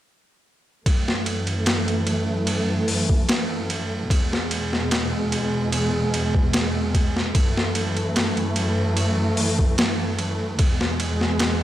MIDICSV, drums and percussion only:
0, 0, Header, 1, 2, 480
1, 0, Start_track
1, 0, Key_signature, 3, "minor"
1, 0, Tempo, 810811
1, 514, Time_signature, 4, 2, 24, 8
1, 6885, End_track
2, 0, Start_track
2, 0, Title_t, "Drums"
2, 510, Note_on_c, 9, 36, 96
2, 510, Note_on_c, 9, 51, 77
2, 569, Note_off_c, 9, 36, 0
2, 569, Note_off_c, 9, 51, 0
2, 641, Note_on_c, 9, 38, 46
2, 700, Note_off_c, 9, 38, 0
2, 747, Note_on_c, 9, 51, 58
2, 806, Note_off_c, 9, 51, 0
2, 870, Note_on_c, 9, 51, 38
2, 929, Note_off_c, 9, 51, 0
2, 983, Note_on_c, 9, 51, 75
2, 988, Note_on_c, 9, 38, 99
2, 1043, Note_off_c, 9, 51, 0
2, 1047, Note_off_c, 9, 38, 0
2, 1113, Note_on_c, 9, 51, 37
2, 1172, Note_off_c, 9, 51, 0
2, 1223, Note_on_c, 9, 51, 59
2, 1282, Note_off_c, 9, 51, 0
2, 1461, Note_on_c, 9, 51, 76
2, 1521, Note_off_c, 9, 51, 0
2, 1704, Note_on_c, 9, 46, 67
2, 1764, Note_off_c, 9, 46, 0
2, 1832, Note_on_c, 9, 36, 85
2, 1891, Note_off_c, 9, 36, 0
2, 1945, Note_on_c, 9, 51, 79
2, 1950, Note_on_c, 9, 38, 97
2, 2005, Note_off_c, 9, 51, 0
2, 2009, Note_off_c, 9, 38, 0
2, 2190, Note_on_c, 9, 51, 54
2, 2249, Note_off_c, 9, 51, 0
2, 2429, Note_on_c, 9, 36, 98
2, 2432, Note_on_c, 9, 51, 79
2, 2488, Note_off_c, 9, 36, 0
2, 2491, Note_off_c, 9, 51, 0
2, 2564, Note_on_c, 9, 38, 43
2, 2623, Note_off_c, 9, 38, 0
2, 2670, Note_on_c, 9, 51, 60
2, 2729, Note_off_c, 9, 51, 0
2, 2800, Note_on_c, 9, 38, 32
2, 2859, Note_off_c, 9, 38, 0
2, 2908, Note_on_c, 9, 51, 74
2, 2913, Note_on_c, 9, 38, 94
2, 2967, Note_off_c, 9, 51, 0
2, 2972, Note_off_c, 9, 38, 0
2, 3151, Note_on_c, 9, 51, 58
2, 3210, Note_off_c, 9, 51, 0
2, 3389, Note_on_c, 9, 51, 74
2, 3448, Note_off_c, 9, 51, 0
2, 3633, Note_on_c, 9, 51, 57
2, 3693, Note_off_c, 9, 51, 0
2, 3757, Note_on_c, 9, 36, 84
2, 3816, Note_off_c, 9, 36, 0
2, 3868, Note_on_c, 9, 51, 80
2, 3873, Note_on_c, 9, 38, 103
2, 3927, Note_off_c, 9, 51, 0
2, 3932, Note_off_c, 9, 38, 0
2, 4111, Note_on_c, 9, 36, 77
2, 4112, Note_on_c, 9, 51, 59
2, 4171, Note_off_c, 9, 36, 0
2, 4171, Note_off_c, 9, 51, 0
2, 4242, Note_on_c, 9, 38, 36
2, 4301, Note_off_c, 9, 38, 0
2, 4350, Note_on_c, 9, 51, 77
2, 4351, Note_on_c, 9, 36, 102
2, 4409, Note_off_c, 9, 51, 0
2, 4410, Note_off_c, 9, 36, 0
2, 4484, Note_on_c, 9, 38, 46
2, 4543, Note_off_c, 9, 38, 0
2, 4589, Note_on_c, 9, 51, 58
2, 4648, Note_off_c, 9, 51, 0
2, 4715, Note_on_c, 9, 51, 38
2, 4775, Note_off_c, 9, 51, 0
2, 4830, Note_on_c, 9, 51, 78
2, 4835, Note_on_c, 9, 38, 99
2, 4889, Note_off_c, 9, 51, 0
2, 4894, Note_off_c, 9, 38, 0
2, 4955, Note_on_c, 9, 51, 39
2, 5014, Note_off_c, 9, 51, 0
2, 5067, Note_on_c, 9, 51, 61
2, 5126, Note_off_c, 9, 51, 0
2, 5308, Note_on_c, 9, 51, 71
2, 5367, Note_off_c, 9, 51, 0
2, 5548, Note_on_c, 9, 46, 68
2, 5607, Note_off_c, 9, 46, 0
2, 5677, Note_on_c, 9, 36, 82
2, 5736, Note_off_c, 9, 36, 0
2, 5789, Note_on_c, 9, 51, 79
2, 5794, Note_on_c, 9, 38, 107
2, 5848, Note_off_c, 9, 51, 0
2, 5853, Note_off_c, 9, 38, 0
2, 6030, Note_on_c, 9, 51, 54
2, 6089, Note_off_c, 9, 51, 0
2, 6267, Note_on_c, 9, 51, 80
2, 6271, Note_on_c, 9, 36, 102
2, 6326, Note_off_c, 9, 51, 0
2, 6330, Note_off_c, 9, 36, 0
2, 6398, Note_on_c, 9, 38, 44
2, 6457, Note_off_c, 9, 38, 0
2, 6510, Note_on_c, 9, 51, 63
2, 6569, Note_off_c, 9, 51, 0
2, 6637, Note_on_c, 9, 38, 33
2, 6696, Note_off_c, 9, 38, 0
2, 6745, Note_on_c, 9, 51, 75
2, 6750, Note_on_c, 9, 38, 105
2, 6804, Note_off_c, 9, 51, 0
2, 6809, Note_off_c, 9, 38, 0
2, 6885, End_track
0, 0, End_of_file